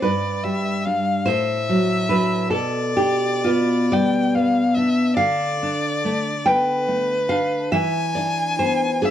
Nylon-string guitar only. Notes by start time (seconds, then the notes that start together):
0.02 G2 B4
0.45 G3
0.86 G3 D4
1.26 A2 C5
1.69 F#3
2.09 F#3 D4 B4
2.50 B2 A4
2.97 D4 G4
3.44 B3 F4
3.92 G3 D5
4.35 B3
4.77 D4
5.17 D3 F5
5.63 D4
6.05 A3
6.46 B3 G5
6.88 A3
7.29 D4 F5
7.72 E3 E5
8.15 D4 D5
8.59 B3 C5
9.02 D4 G#4